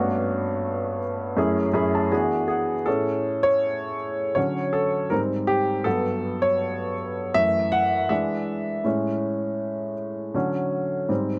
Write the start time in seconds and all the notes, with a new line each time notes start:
Already playing: G2 A3 B3 C#4 D4 F#4
1.37 F#2 A3 C#4 E4 G#4
1.74 F#2 A3 C#4 E4 G#4 B5
1.95 A5
2.11 E3 B3 D4 F#4 G#4 G#5
2.48 G#4 F#5
2.86 A2 C#4 G#4 A4
3.43 C#5
4.35 D3 F#3 C#4 C#5
4.73 A4
5.10 G#2 G3 C4 A#4
5.47 G4
5.84 G2 F#3 B3 A4
6.42 C#5
7.34 F#2 E3 A3 E5
7.72 F#5
8.09 E3 G#3 D4 E5
8.84 A2 G#3 C#4
10.34 D3 F#3 C#4
11.09 G#2 G3 C4